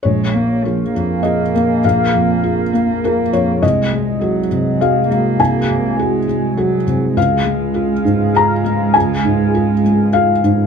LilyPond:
<<
  \new Staff \with { instrumentName = "Analog synth pad" } { \time 3/4 \key bes \minor \tempo 4 = 101 <bes aes' f''>2.~ | <bes aes' f''>2. | <aes ges' aes'>2.~ | <aes ges' aes'>2. |
<aes aes' f''>2.~ | <aes aes' f''>2. | }
  \new Staff \with { instrumentName = "Felt piano" } { \time 3/4 \key bes \minor << { des''2 ees''4 | f''2 bes'8 des''8 | ees''2 f''4 | aes''2~ aes''8 r8 |
f''2 bes''4 | aes''2 f''4 | } \\ { bes,,8 bes8 <f' aes'>8 f,8 <f' aes'>8 bes8 | bes,,8 f,8 <f' aes'>8 bes8 <f' aes'>8 f,8 | c,8 aes8 <ges' aes'>8 c8 <ges' aes'>8 aes8 | c,8 c8 <ges' aes'>8 aes8 <ges' aes'>8 c8 |
des,8 aes8 <f' aes'>8 aes,8 <f' aes'>8 aes8 | des,8 aes,8 <f' aes'>8 aes8 <f' aes'>8 aes,8 | } >> }
  \new Staff \with { instrumentName = "Cello" } { \clef bass \time 3/4 \key bes \minor aes8 bes8 f8 bes4.~ | bes2. | aes4 ges4 aes8 bes8~ | bes4 aes4 ges4 |
aes2.~ | aes2. | }
>>